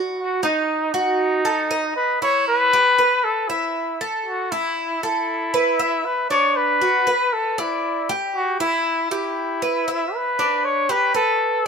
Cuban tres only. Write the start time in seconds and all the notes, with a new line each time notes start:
Already playing: F#4
0.43 D#4
0.94 F#4
1.45 A4
1.71 D#5
2.22 E4
2.73 G4
2.98 B4
3.50 E5
4.01 A4
4.52 E4
5.03 A4
5.54 B4
5.79 E5
6.30 D4
6.81 F#4
7.07 B4
7.58 D5
8.09 G4
8.60 E4
9.11 G4
9.62 B4
9.88 E5
10.39 D4
10.89 G4
11.14 B4